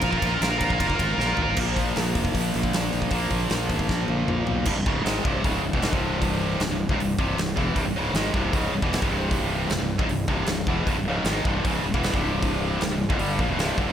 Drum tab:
CC |----------------|x---------------|----------------|x---------------|
RD |x-x-x-x-x-x-----|----------------|----------------|----------------|
HH |----------------|--o-o-o-o-o-o-o-|o-o-o-o---------|----o---o---o---|
SD |----o-------o---|----o-------o---|----o---o-------|----o-------o---|
T1 |----------------|----------------|----------o-----|----------------|
T2 |----------------|----------------|------------o---|----------------|
FT |--------------o-|----------------|--------------o-|----------------|
BD |ooo---ooooo-----|o-o---ooo--o---o|o-o---ooo-------|o-o---o-o--o-o--|

CC |----------------|----------------|----------------|----------------|
RD |----------------|----------------|----------------|----------------|
HH |o---o---o---o---|o---o---o---o---|o---o---o---o---|o---o---o---o---|
SD |----o-------o---|----o-------o---|----o-------o---|----o-------o---|
T1 |----------------|----------------|----------------|----------------|
T2 |----------------|----------------|----------------|----------------|
FT |----------------|----------------|----------------|----------------|
BD |o------o--o---o-|o-----o-o--o-o--|o------o--o---o-|o-----o-o--o-o--|

CC |----------------|
RD |----------------|
HH |o---o---o---o---|
SD |----o-------o---|
T1 |----------------|
T2 |----------------|
FT |----------------|
BD |o------o--o---o-|